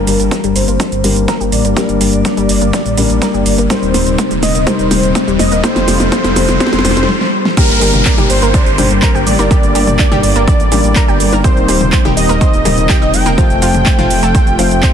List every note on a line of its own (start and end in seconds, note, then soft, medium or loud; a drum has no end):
0.00 3.66 D3 medium
0.00 1.01 G3 medium
0.00 5.60 G3 medium
0.00 1.01 A#3 medium
0.00 5.60 A#3 medium
0.00 1.01 D4 medium
0.00 3.66 G4 medium
0.00 0.46 A#4 loud
0.00 1.01 A#4 medium
0.00 riser medium
0.07 0.17 G1 loud
0.07 0.12 G3 medium
0.07 open hi-hat loud
0.07 cabasa medium
0.20 0.29 G1 medium
0.20 closed hi-hat medium
0.20 cabasa soft
0.31 0.36 D4 medium
0.31 kick loud
0.31 snare soft
0.31 closed hi-hat medium
0.31 cabasa soft
0.44 0.53 G1 medium
0.44 0.54 G3 loud
0.44 closed hi-hat soft
0.44 cabasa soft
0.56 0.65 G1 loud
0.56 1.43 C5 loud
0.56 open hi-hat medium
0.56 cabasa medium
0.68 0.77 G1 medium
0.68 0.78 A#3 medium
0.68 closed hi-hat medium
0.68 cabasa soft
0.80 0.84 D4 medium
0.80 kick loud
0.80 snare medium
0.80 closed hi-hat medium
0.80 cabasa soft
0.92 1.01 G1 medium
0.92 closed hi-hat soft
0.92 cabasa soft
1.04 1.14 G1 loud
1.04 1.74 G3 medium
1.04 1.08 G3 medium
1.04 1.74 A#3 medium
1.04 1.74 D4 medium
1.04 1.74 A#4 medium
1.04 open hi-hat loud
1.04 cabasa medium
1.16 1.26 G1 medium
1.16 closed hi-hat medium
1.16 cabasa soft
1.28 1.32 A#4 loud
1.28 kick loud
1.28 snare medium
1.28 closed hi-hat medium
1.28 cabasa soft
1.41 1.50 G1 medium
1.41 1.47 G4 medium
1.41 cabasa soft
1.52 1.62 A1 loud
1.52 3.61 D5 loud
1.52 open hi-hat medium
1.52 cabasa medium
1.65 1.74 G1 medium
1.65 1.75 A#3 medium
1.65 closed hi-hat medium
1.65 cabasa soft
1.77 1.81 G3 medium
1.77 2.95 G3 medium
1.77 2.95 A#3 medium
1.77 2.95 D4 medium
1.77 2.95 A#4 loud
1.77 kick loud
1.77 snare medium
1.77 closed hi-hat medium
1.77 cabasa soft
1.89 1.98 G1 medium
1.89 closed hi-hat soft
1.89 cabasa soft
2.01 2.10 G1 loud
2.01 2.05 G3 medium
2.01 open hi-hat loud
2.01 cabasa medium
2.13 2.22 G1 medium
2.13 closed hi-hat medium
2.13 cabasa soft
2.25 2.29 D4 medium
2.25 kick loud
2.25 snare medium
2.25 closed hi-hat medium
2.25 cabasa soft
2.37 2.46 G1 medium
2.37 2.48 G3 loud
2.37 closed hi-hat soft
2.37 cabasa soft
2.49 2.59 G1 loud
2.49 open hi-hat loud
2.49 cabasa medium
2.61 2.71 G1 medium
2.61 2.72 A#3 medium
2.61 closed hi-hat medium
2.61 cabasa soft
2.73 2.78 D4 medium
2.73 kick loud
2.73 snare medium
2.73 closed hi-hat medium
2.73 cabasa soft
2.86 2.95 A1 medium
2.86 closed hi-hat soft
2.86 cabasa soft
2.97 3.07 A1 medium
2.97 3.02 G3 medium
2.97 3.67 G3 medium
2.97 3.67 A#3 medium
2.97 3.67 D4 medium
2.97 3.67 A#4 medium
2.97 open hi-hat loud
2.97 cabasa medium
3.10 3.19 A1 medium
3.10 closed hi-hat soft
3.10 cabasa soft
3.22 3.26 A#4 loud
3.22 kick loud
3.22 snare medium
3.22 closed hi-hat medium
3.22 cabasa soft
3.34 3.43 G1 medium
3.34 3.41 G4 medium
3.34 cabasa soft
3.46 3.56 G1 loud
3.46 open hi-hat medium
3.46 cabasa medium
3.58 3.68 G1 medium
3.58 3.69 A#3 medium
3.58 closed hi-hat medium
3.58 cabasa soft
3.70 7.05 C3 medium
3.70 4.65 G3 medium
3.70 3.74 G3 medium
3.70 4.65 C4 medium
3.70 5.62 D#4 medium
3.70 4.65 D#4 medium
3.70 4.65 A#4 medium
3.70 4.33 C5 loud
3.70 kick loud
3.70 snare medium
3.70 closed hi-hat medium
3.70 cabasa soft
3.83 3.92 D#1 medium
3.83 cabasa soft
3.94 4.04 D#1 loud
3.94 3.99 G3 medium
3.94 snare medium
3.94 open hi-hat loud
3.94 cabasa medium
4.07 4.16 D#1 medium
4.07 closed hi-hat medium
4.07 cabasa soft
4.18 4.23 C4 medium
4.18 kick loud
4.18 snare medium
4.18 closed hi-hat medium
4.18 cabasa soft
4.31 4.40 D#1 medium
4.31 4.41 G3 medium
4.31 closed hi-hat soft
4.31 cabasa soft
4.43 4.52 D#1 loud
4.43 4.65 D#5 medium
4.43 snare medium
4.43 open hi-hat medium
4.43 cabasa medium
4.55 4.64 D#1 medium
4.55 4.65 A#3 medium
4.55 closed hi-hat medium
4.55 cabasa soft
4.67 4.71 G3 medium
4.67 5.62 G3 medium
4.67 5.62 C4 medium
4.67 5.62 D#4 medium
4.67 5.62 A#4 loud
4.67 5.30 C5 loud
4.67 kick loud
4.67 snare medium
4.67 closed hi-hat medium
4.67 cabasa soft
4.79 4.88 D#1 medium
4.79 closed hi-hat soft
4.79 cabasa soft
4.91 5.01 D#1 loud
4.91 4.95 G3 medium
4.91 snare medium
4.91 open hi-hat loud
4.91 cabasa medium
5.03 5.13 D#1 medium
5.03 closed hi-hat soft
5.03 cabasa soft
5.15 5.19 C4 medium
5.15 kick loud
5.15 snare medium
5.15 closed hi-hat medium
5.15 cabasa soft
5.27 5.37 D#1 medium
5.27 5.38 G3 medium
5.27 cabasa soft
5.39 5.49 F1 loud
5.39 5.62 D#5 medium
5.39 snare medium
5.39 open hi-hat loud
5.39 cabasa medium
5.52 5.61 D#1 medium
5.52 5.62 A#3 medium
5.52 closed hi-hat medium
5.52 cabasa soft
5.64 7.07 F3 medium
5.64 5.68 G3 medium
5.64 6.10 G3 medium
5.64 7.07 A3 medium
5.64 6.10 C4 medium
5.64 6.10 D#4 medium
5.64 7.07 F4 medium
5.64 6.10 A4 loud
5.64 6.10 C5 loud
5.64 kick loud
5.64 snare medium
5.64 closed hi-hat medium
5.64 cabasa soft
5.76 5.85 F1 medium
5.76 snare medium
5.76 closed hi-hat soft
5.76 cabasa soft
5.88 5.97 F1 loud
5.88 5.92 G3 medium
5.88 snare medium
5.88 open hi-hat loud
5.88 cabasa medium
6.00 6.09 F1 medium
6.00 snare medium
6.00 closed hi-hat medium
6.00 cabasa soft
6.12 6.59 G3 medium
6.12 6.16 G3 medium
6.12 6.59 C4 medium
6.12 6.59 D#4 medium
6.12 6.59 A4 loud
6.12 6.58 C5 medium
6.12 kick loud
6.12 snare medium
6.12 closed hi-hat medium
6.12 cabasa soft
6.24 6.34 F1 medium
6.24 snare medium
6.24 closed hi-hat soft
6.24 cabasa soft
6.36 6.46 F1 loud
6.36 6.41 G3 medium
6.36 snare loud
6.36 open hi-hat loud
6.36 cabasa medium
6.49 6.58 F1 medium
6.49 snare medium
6.49 closed hi-hat medium
6.49 cabasa soft
6.60 6.65 G3 medium
6.60 6.83 G3 loud
6.60 6.83 C4 medium
6.60 6.83 D#4 medium
6.60 6.83 A4 loud
6.60 6.83 C5 loud
6.60 kick loud
6.60 snare loud
6.60 closed hi-hat medium
6.60 cabasa soft
6.67 snare medium
6.73 6.82 F1 medium
6.73 snare medium
6.73 closed hi-hat soft
6.73 cabasa soft
6.79 snare medium
6.85 6.94 F1 loud
6.85 7.07 G3 medium
6.85 6.89 G3 medium
6.85 7.07 C4 medium
6.85 7.07 D#4 medium
6.85 7.07 A4 loud
6.85 7.07 C5 loud
6.85 snare loud
6.85 open hi-hat loud
6.85 cabasa medium
6.91 snare loud
6.97 7.06 F1 medium
6.97 snare medium
6.97 closed hi-hat medium
6.97 cabasa soft
7.03 snare medium
7.09 snare medium
7.21 snare medium
7.45 snare medium
7.57 11.41 D3 medium
7.57 8.75 G3 medium
7.57 7.62 G3 medium
7.57 13.34 G3 medium
7.57 8.75 A#3 medium
7.57 13.34 A#3 medium
7.57 8.75 D4 medium
7.57 7.62 G4 medium
7.57 11.41 G4 medium
7.57 8.20 A#4 loud
7.57 8.75 A#4 loud
7.57 kick loud
7.57 closed hi-hat medium
7.57 crash loud
7.57 downlifter medium
7.57 cabasa soft
7.70 7.79 G1 medium
7.70 cabasa soft
7.81 7.91 G1 loud
7.81 7.86 G3 medium
7.81 7.86 G4 medium
7.81 open hi-hat loud
7.81 cabasa medium
7.94 8.03 G1 medium
7.94 closed hi-hat medium
7.94 mid tom medium
7.94 cabasa soft
8.05 8.10 D4 medium
8.05 8.10 D5 medium
8.05 kick loud
8.05 clap loud
8.05 closed hi-hat medium
8.05 cabasa soft
8.18 8.27 G1 medium
8.18 8.28 G3 loud
8.18 8.28 G4 medium
8.18 closed hi-hat soft
8.18 mid tom loud
8.18 high conga loud
8.18 cabasa soft
8.30 8.39 G1 loud
8.30 9.17 C5 loud
8.30 open hi-hat loud
8.30 cabasa medium
8.42 8.51 G1 medium
8.42 8.53 A#3 medium
8.42 8.53 A#4 medium
8.42 closed hi-hat medium
8.42 cabasa soft
8.54 8.58 D4 medium
8.54 8.58 D5 medium
8.54 kick loud
8.54 closed hi-hat medium
8.54 cabasa soft
8.66 8.76 G1 medium
8.66 closed hi-hat soft
8.66 cabasa soft
8.78 8.88 G1 loud
8.78 9.48 G3 medium
8.78 8.83 G3 medium
8.78 9.48 A#3 medium
8.78 9.48 D4 medium
8.78 8.83 G4 medium
8.78 9.48 A#4 medium
8.78 open hi-hat loud
8.78 mid tom medium
8.78 high conga medium
8.78 cabasa medium
8.91 9.00 G1 loud
8.91 closed hi-hat medium
8.91 cabasa soft
9.02 9.07 A#4 loud
9.02 9.07 A#5 medium
9.02 kick loud
9.02 clap loud
9.02 closed hi-hat medium
9.02 cabasa soft
9.15 9.24 G1 medium
9.15 9.22 G4 medium
9.15 9.22 G5 medium
9.15 cabasa soft
9.27 9.36 A1 loud
9.27 11.35 D5 loud
9.27 open hi-hat medium
9.27 cabasa medium
9.39 9.48 G1 loud
9.39 9.49 A#3 medium
9.39 9.49 A#4 medium
9.39 closed hi-hat medium
9.39 high conga medium
9.39 cabasa soft
9.51 10.69 G3 medium
9.51 9.55 G3 medium
9.51 10.69 A#3 medium
9.51 10.69 D4 medium
9.51 9.55 G4 medium
9.51 10.69 A#4 loud
9.51 kick loud
9.51 closed hi-hat medium
9.51 cabasa soft
9.63 9.72 G1 medium
9.63 closed hi-hat soft
9.63 cabasa soft
9.75 9.85 G1 loud
9.75 9.79 G3 medium
9.75 9.79 G4 medium
9.75 open hi-hat loud
9.75 cabasa medium
9.87 9.97 G1 medium
9.87 closed hi-hat medium
9.87 mid tom medium
9.87 cabasa soft
9.99 10.04 D4 medium
9.99 10.04 D5 medium
9.99 kick loud
9.99 clap loud
9.99 closed hi-hat medium
9.99 cabasa soft
10.11 10.21 G1 medium
10.11 10.22 G3 loud
10.11 10.22 G4 medium
10.11 closed hi-hat soft
10.11 mid tom loud
10.11 high conga loud
10.11 cabasa soft
10.23 10.33 G1 loud
10.23 open hi-hat loud
10.23 cabasa medium
10.36 10.45 G1 medium
10.36 10.46 A#3 medium
10.36 10.46 A#4 medium
10.36 closed hi-hat medium
10.36 cabasa soft
10.48 10.52 D4 medium
10.48 10.52 D5 medium
10.48 kick loud
10.48 closed hi-hat medium
10.48 cabasa soft
10.60 10.69 A1 medium
10.60 closed hi-hat soft
10.60 cabasa soft
10.72 10.81 A1 loud
10.72 10.76 G3 medium
10.72 11.42 G3 medium
10.72 11.41 A#3 medium
10.72 11.42 D4 medium
10.72 10.76 G4 medium
10.72 11.42 A#4 medium
10.72 open hi-hat loud
10.72 high conga medium
10.72 cabasa medium
10.84 10.93 A1 medium
10.84 closed hi-hat soft
10.84 cabasa soft
10.96 11.00 A#4 loud
10.96 11.00 A#5 medium
10.96 kick loud
10.96 clap loud
10.96 closed hi-hat medium
10.96 cabasa soft
11.08 11.17 G1 medium
11.08 11.15 G4 medium
11.08 11.15 G5 medium
11.08 cabasa soft
11.20 11.30 G1 loud
11.20 open hi-hat medium
11.20 cabasa medium
11.32 11.42 G1 medium
11.32 11.43 A#3 medium
11.32 11.43 A#4 medium
11.32 closed hi-hat medium
11.32 high conga loud
11.32 cabasa soft
11.44 14.93 C3 medium
11.44 11.49 G3 medium
11.44 12.62 G3 medium
11.44 12.62 C4 medium
11.44 12.63 D#4 medium
11.44 13.36 D#4 medium
11.44 11.49 G4 medium
11.44 12.62 A#4 loud
11.44 12.07 C5 loud
11.44 kick loud
11.44 closed hi-hat medium
11.44 cabasa soft
11.57 11.66 D#1 medium
11.57 cabasa soft
11.68 11.78 D#1 loud
11.68 11.73 G3 medium
11.68 11.73 G4 medium
11.68 open hi-hat loud
11.68 cabasa medium
11.81 11.90 D#1 loud
11.81 closed hi-hat soft
11.81 mid tom medium
11.81 cabasa soft
11.92 11.97 C4 medium
11.92 11.97 C5 medium
11.92 kick loud
11.92 clap loud
11.92 closed hi-hat medium
11.92 cabasa soft
12.05 12.14 D#1 medium
12.05 12.15 G3 loud
12.05 12.15 G4 medium
12.05 closed hi-hat soft
12.05 mid tom loud
12.05 high conga loud
12.05 cabasa soft
12.17 12.26 D#1 medium
12.17 13.15 D#5 loud
12.17 open hi-hat loud
12.17 cabasa medium
12.29 12.38 D#1 medium
12.29 12.40 A#3 medium
12.29 12.40 A#4 medium
12.29 closed hi-hat medium
12.29 cabasa soft
12.41 12.45 C4 medium
12.41 12.45 C5 medium
12.41 kick loud
12.41 closed hi-hat medium
12.41 cabasa soft
12.53 12.63 D#1 medium
12.53 closed hi-hat soft
12.53 cabasa soft
12.65 12.75 D#1 medium
12.65 12.70 G3 medium
12.65 13.35 G3 medium
12.65 13.35 C4 medium
12.65 13.35 D#4 medium
12.65 12.70 G4 medium
12.65 13.35 A#4 medium
12.65 open hi-hat loud
12.65 mid tom medium
12.65 high conga medium
12.65 cabasa medium
12.78 12.87 D#1 medium
12.78 closed hi-hat medium
12.78 cabasa soft
12.89 12.94 G4 loud
12.89 12.94 G5 medium
12.89 kick loud
12.89 clap loud
12.89 closed hi-hat medium
12.89 cabasa soft
13.02 13.11 D#1 medium
13.02 13.09 D#4 medium
13.02 13.09 D#5 medium
13.02 cabasa soft
13.14 13.23 F1 loud
13.14 14.93 G5 loud
13.14 open hi-hat medium
13.14 cabasa medium
13.26 13.35 D#1 medium
13.26 13.36 A#3 medium
13.26 13.36 A#4 medium
13.26 closed hi-hat medium
13.26 high conga medium
13.26 cabasa soft
13.38 13.42 F3 medium
13.38 14.93 F3 medium
13.38 14.56 A3 medium
13.38 14.93 A3 medium
13.38 14.56 C4 medium
13.38 14.56 F4 medium
13.38 13.42 F4 medium
13.38 14.93 F4 medium
13.38 14.56 C5 loud
13.38 kick loud
13.38 closed hi-hat medium
13.38 cabasa soft
13.50 13.59 F1 medium
13.50 closed hi-hat soft
13.50 cabasa soft
13.62 13.72 F1 loud
13.62 13.66 F3 medium
13.62 13.66 F4 medium
13.62 open hi-hat loud
13.62 cabasa medium
13.74 13.84 F1 medium
13.74 closed hi-hat medium
13.74 mid tom medium
13.74 cabasa soft
13.86 13.91 C4 medium
13.86 13.91 C5 medium
13.86 kick loud
13.86 clap loud
13.86 closed hi-hat medium
13.86 cabasa soft
13.98 14.08 F1 medium
13.98 14.09 F3 loud
13.98 14.09 F4 medium
13.98 closed hi-hat soft
13.98 mid tom loud
13.98 high conga loud
13.98 cabasa soft
14.10 14.20 F1 loud
14.10 open hi-hat loud
14.10 cabasa medium
14.23 14.32 F1 medium
14.23 14.33 A3 medium
14.23 14.33 A4 medium
14.23 closed hi-hat medium
14.23 cabasa soft
14.35 14.39 C4 medium
14.35 14.39 C5 medium
14.35 kick loud
14.35 closed hi-hat medium
14.35 cabasa soft
14.47 14.56 F1 medium
14.47 closed hi-hat soft
14.47 cabasa soft
14.59 14.68 F1 loud
14.59 14.70 F3 medium
14.59 14.93 A3 medium
14.59 14.93 C4 medium
14.59 14.70 F4 medium
14.59 14.93 F4 medium
14.59 14.93 C5 medium
14.59 open hi-hat loud
14.59 high conga medium
14.59 cabasa medium
14.71 14.80 F1 medium
14.71 closed hi-hat soft
14.71 cabasa soft
14.83 14.90 C4 medium
14.83 14.90 C5 medium
14.83 kick loud
14.83 clap loud
14.83 closed hi-hat medium
14.83 cabasa soft